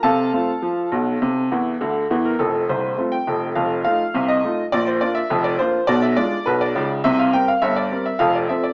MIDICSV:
0, 0, Header, 1, 2, 480
1, 0, Start_track
1, 0, Key_signature, -1, "major"
1, 0, Tempo, 588235
1, 28, Time_signature, 2, 2, 24, 8
1, 2907, Tempo, 580833
1, 7177, End_track
2, 0, Start_track
2, 0, Title_t, "Upright piano"
2, 0, Program_c, 0, 0
2, 24, Note_on_c, 0, 81, 80
2, 28, Note_on_c, 0, 48, 82
2, 31, Note_on_c, 0, 69, 65
2, 36, Note_on_c, 0, 77, 64
2, 233, Note_off_c, 0, 48, 0
2, 269, Note_on_c, 0, 57, 45
2, 274, Note_on_c, 0, 60, 44
2, 278, Note_on_c, 0, 65, 50
2, 402, Note_off_c, 0, 57, 0
2, 405, Note_off_c, 0, 60, 0
2, 408, Note_off_c, 0, 65, 0
2, 508, Note_on_c, 0, 53, 67
2, 714, Note_off_c, 0, 53, 0
2, 748, Note_on_c, 0, 47, 67
2, 749, Note_on_c, 0, 35, 72
2, 942, Note_off_c, 0, 35, 0
2, 942, Note_off_c, 0, 47, 0
2, 994, Note_on_c, 0, 48, 83
2, 1197, Note_off_c, 0, 48, 0
2, 1236, Note_on_c, 0, 40, 71
2, 1240, Note_on_c, 0, 52, 74
2, 1415, Note_off_c, 0, 40, 0
2, 1417, Note_off_c, 0, 52, 0
2, 1475, Note_on_c, 0, 50, 69
2, 1479, Note_on_c, 0, 38, 70
2, 1655, Note_off_c, 0, 50, 0
2, 1657, Note_off_c, 0, 38, 0
2, 1680, Note_off_c, 0, 81, 0
2, 1683, Note_off_c, 0, 69, 0
2, 1686, Note_off_c, 0, 77, 0
2, 1717, Note_on_c, 0, 40, 69
2, 1722, Note_on_c, 0, 52, 69
2, 1839, Note_on_c, 0, 70, 65
2, 1896, Note_off_c, 0, 40, 0
2, 1899, Note_off_c, 0, 52, 0
2, 1949, Note_on_c, 0, 69, 63
2, 1953, Note_on_c, 0, 29, 65
2, 1955, Note_on_c, 0, 41, 65
2, 1956, Note_off_c, 0, 70, 0
2, 2144, Note_off_c, 0, 29, 0
2, 2146, Note_off_c, 0, 41, 0
2, 2178, Note_off_c, 0, 69, 0
2, 2197, Note_on_c, 0, 72, 65
2, 2198, Note_on_c, 0, 36, 66
2, 2199, Note_on_c, 0, 24, 64
2, 2387, Note_off_c, 0, 24, 0
2, 2387, Note_off_c, 0, 36, 0
2, 2432, Note_on_c, 0, 57, 45
2, 2433, Note_on_c, 0, 65, 43
2, 2436, Note_on_c, 0, 60, 42
2, 2482, Note_off_c, 0, 72, 0
2, 2544, Note_on_c, 0, 79, 71
2, 2563, Note_off_c, 0, 57, 0
2, 2563, Note_off_c, 0, 65, 0
2, 2565, Note_off_c, 0, 60, 0
2, 2671, Note_on_c, 0, 29, 65
2, 2673, Note_on_c, 0, 41, 60
2, 2832, Note_off_c, 0, 79, 0
2, 2861, Note_off_c, 0, 29, 0
2, 2862, Note_off_c, 0, 41, 0
2, 2900, Note_on_c, 0, 77, 66
2, 2901, Note_on_c, 0, 41, 72
2, 2906, Note_on_c, 0, 29, 69
2, 3095, Note_off_c, 0, 77, 0
2, 3108, Note_off_c, 0, 41, 0
2, 3111, Note_off_c, 0, 29, 0
2, 3141, Note_on_c, 0, 77, 82
2, 3149, Note_on_c, 0, 57, 43
2, 3149, Note_on_c, 0, 63, 41
2, 3150, Note_on_c, 0, 65, 51
2, 3281, Note_off_c, 0, 57, 0
2, 3281, Note_off_c, 0, 63, 0
2, 3282, Note_off_c, 0, 65, 0
2, 3384, Note_on_c, 0, 48, 69
2, 3389, Note_on_c, 0, 36, 74
2, 3486, Note_off_c, 0, 77, 0
2, 3502, Note_on_c, 0, 75, 83
2, 3590, Note_off_c, 0, 48, 0
2, 3593, Note_off_c, 0, 36, 0
2, 3634, Note_on_c, 0, 57, 43
2, 3634, Note_on_c, 0, 63, 46
2, 3638, Note_on_c, 0, 65, 47
2, 3765, Note_off_c, 0, 57, 0
2, 3765, Note_off_c, 0, 63, 0
2, 3768, Note_off_c, 0, 65, 0
2, 3793, Note_off_c, 0, 75, 0
2, 3866, Note_on_c, 0, 74, 99
2, 3871, Note_on_c, 0, 34, 75
2, 3871, Note_on_c, 0, 46, 78
2, 3988, Note_off_c, 0, 74, 0
2, 3988, Note_on_c, 0, 72, 67
2, 4075, Note_off_c, 0, 34, 0
2, 4075, Note_off_c, 0, 46, 0
2, 4103, Note_on_c, 0, 74, 86
2, 4109, Note_off_c, 0, 72, 0
2, 4110, Note_on_c, 0, 58, 49
2, 4111, Note_on_c, 0, 62, 52
2, 4116, Note_on_c, 0, 65, 54
2, 4216, Note_on_c, 0, 76, 83
2, 4226, Note_off_c, 0, 74, 0
2, 4242, Note_off_c, 0, 58, 0
2, 4243, Note_off_c, 0, 62, 0
2, 4246, Note_off_c, 0, 65, 0
2, 4344, Note_on_c, 0, 29, 79
2, 4345, Note_on_c, 0, 41, 80
2, 4450, Note_off_c, 0, 76, 0
2, 4460, Note_on_c, 0, 74, 83
2, 4550, Note_off_c, 0, 29, 0
2, 4551, Note_off_c, 0, 41, 0
2, 4582, Note_on_c, 0, 72, 84
2, 4584, Note_off_c, 0, 74, 0
2, 4588, Note_on_c, 0, 58, 48
2, 4592, Note_on_c, 0, 62, 46
2, 4594, Note_on_c, 0, 65, 52
2, 4720, Note_off_c, 0, 58, 0
2, 4723, Note_off_c, 0, 62, 0
2, 4725, Note_off_c, 0, 65, 0
2, 4813, Note_off_c, 0, 72, 0
2, 4816, Note_on_c, 0, 74, 103
2, 4821, Note_on_c, 0, 47, 87
2, 4825, Note_on_c, 0, 35, 82
2, 4941, Note_on_c, 0, 76, 81
2, 4943, Note_off_c, 0, 74, 0
2, 5029, Note_off_c, 0, 47, 0
2, 5031, Note_off_c, 0, 35, 0
2, 5058, Note_on_c, 0, 74, 90
2, 5064, Note_on_c, 0, 56, 54
2, 5065, Note_off_c, 0, 76, 0
2, 5065, Note_on_c, 0, 62, 48
2, 5069, Note_on_c, 0, 65, 51
2, 5197, Note_off_c, 0, 56, 0
2, 5198, Note_off_c, 0, 62, 0
2, 5201, Note_off_c, 0, 65, 0
2, 5291, Note_off_c, 0, 74, 0
2, 5299, Note_on_c, 0, 71, 86
2, 5306, Note_on_c, 0, 47, 74
2, 5308, Note_on_c, 0, 35, 78
2, 5424, Note_off_c, 0, 71, 0
2, 5426, Note_on_c, 0, 74, 85
2, 5511, Note_off_c, 0, 47, 0
2, 5512, Note_off_c, 0, 35, 0
2, 5543, Note_on_c, 0, 49, 77
2, 5545, Note_on_c, 0, 37, 76
2, 5655, Note_off_c, 0, 74, 0
2, 5737, Note_off_c, 0, 49, 0
2, 5738, Note_off_c, 0, 37, 0
2, 5781, Note_on_c, 0, 76, 97
2, 5783, Note_on_c, 0, 36, 79
2, 5785, Note_on_c, 0, 48, 86
2, 5905, Note_off_c, 0, 76, 0
2, 5906, Note_on_c, 0, 77, 78
2, 5989, Note_off_c, 0, 36, 0
2, 5990, Note_off_c, 0, 48, 0
2, 6024, Note_on_c, 0, 79, 90
2, 6026, Note_on_c, 0, 55, 43
2, 6027, Note_off_c, 0, 77, 0
2, 6028, Note_on_c, 0, 60, 49
2, 6036, Note_on_c, 0, 70, 53
2, 6146, Note_off_c, 0, 79, 0
2, 6146, Note_on_c, 0, 77, 78
2, 6159, Note_off_c, 0, 55, 0
2, 6160, Note_off_c, 0, 60, 0
2, 6165, Note_off_c, 0, 70, 0
2, 6258, Note_on_c, 0, 76, 92
2, 6260, Note_on_c, 0, 43, 73
2, 6263, Note_on_c, 0, 31, 71
2, 6267, Note_off_c, 0, 77, 0
2, 6379, Note_on_c, 0, 74, 78
2, 6383, Note_off_c, 0, 76, 0
2, 6468, Note_off_c, 0, 43, 0
2, 6469, Note_off_c, 0, 31, 0
2, 6504, Note_on_c, 0, 55, 45
2, 6506, Note_on_c, 0, 60, 44
2, 6511, Note_on_c, 0, 70, 52
2, 6611, Note_off_c, 0, 74, 0
2, 6621, Note_on_c, 0, 76, 71
2, 6637, Note_off_c, 0, 55, 0
2, 6639, Note_off_c, 0, 60, 0
2, 6642, Note_off_c, 0, 70, 0
2, 6731, Note_on_c, 0, 77, 90
2, 6737, Note_on_c, 0, 41, 82
2, 6740, Note_on_c, 0, 29, 69
2, 6745, Note_off_c, 0, 76, 0
2, 6860, Note_off_c, 0, 77, 0
2, 6864, Note_on_c, 0, 74, 69
2, 6946, Note_off_c, 0, 41, 0
2, 6948, Note_off_c, 0, 29, 0
2, 6980, Note_on_c, 0, 76, 68
2, 6987, Note_off_c, 0, 74, 0
2, 6987, Note_on_c, 0, 53, 44
2, 6988, Note_on_c, 0, 60, 44
2, 6995, Note_on_c, 0, 69, 41
2, 7099, Note_on_c, 0, 74, 67
2, 7105, Note_off_c, 0, 76, 0
2, 7120, Note_off_c, 0, 53, 0
2, 7120, Note_off_c, 0, 60, 0
2, 7125, Note_off_c, 0, 69, 0
2, 7177, Note_off_c, 0, 74, 0
2, 7177, End_track
0, 0, End_of_file